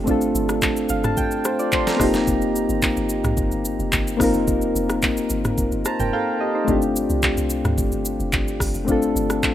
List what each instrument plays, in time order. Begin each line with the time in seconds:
0.04 log drum bass G1, synth keys A3 C4 D4, kick, shaker
0.09 synth keys F4 A4
0.21 shaker
0.35 log drum bass G1, shaker
0.49 cross-stick, shaker
0.62 kick, clap, shaker
0.77 shaker
0.89 log drum bass G1, synth keys F5, shaker
1.04 synth keys A5, cross-stick, mid tom, shaker
1.17 synth keys G5, kick, shaker
1.31 shaker
1.45 synth keys C5, cross-stick, shaker
1.59 synth keys F4 D5, shaker
1.72 synth keys C5 C6, kick, clap, shaker
1.87 synth keys C4 A4 A#5, snare, shaker
1.97 log drum bass F1, synth keys A#3 C4 D#4, kick, cross-stick
2.01 synth keys F4 G4, open hi-hat, shaker
2.14 snare, shaker
2.27 log drum bass F1, kick, shaker
2.42 shaker
2.56 shaker
2.69 log drum bass G1, shaker
2.82 kick, clap, shaker
2.97 log drum bass G1, shaker
3.09 shaker
3.24 log drum bass A#1, cross-stick, mid tom, shaker
3.37 log drum bass G1, kick, shaker
3.52 log drum bass G1, shaker
3.65 shaker
3.79 log drum bass F1, shaker
3.92 log drum bass G1, kick, clap, shaker
4.08 shaker
4.17 log drum bass G1, synth keys A#3 C4 D#4, kick, cross-stick
4.21 synth keys F4 A#4, open hi-hat, shaker
4.34 log drum bass F1, shaker
4.48 log drum bass F1, kick, shaker
4.62 shaker
4.75 log drum bass F1, shaker
4.90 cross-stick, shaker
5.02 kick, clap, shaker
5.17 shaker
5.30 log drum bass G1, shaker
5.45 cross-stick, mid tom, shaker
5.58 log drum bass F1, kick, shaker
5.72 log drum bass G1, shaker
5.85 synth keys C5 A5 A#5, cross-stick, shaker
6.00 log drum bass F1, synth keys A#4 G5, mid tom, shaker
6.13 synth keys A4 F5 G5
6.41 synth keys G4 D#5
6.55 synth keys D#4 C5
6.65 log drum bass G1, synth keys A3 C4 D4, kick, shaker
6.70 synth keys F4 G4
6.82 shaker
6.96 shaker
7.10 log drum bass C2, shaker
7.22 kick, clap, shaker
7.37 log drum bass C2, shaker
7.50 shaker
7.65 log drum bass D2, cross-stick, mid tom, shaker
7.78 log drum bass G1, kick, shaker
7.92 log drum bass G1, shaker
8.05 shaker
8.20 log drum bass F1, shaker
8.33 log drum bass G1, kick, clap, shaker
8.48 shaker
8.60 log drum bass G1, kick, cross-stick, open hi-hat, shaker
8.74 log drum bass F1, shaker
8.85 log drum bass G1, synth keys A3 C4 D4, kick, shaker
8.90 synth keys F4 A4
9.02 shaker
9.16 log drum bass G1, shaker
9.30 cross-stick, shaker
9.43 kick, clap, shaker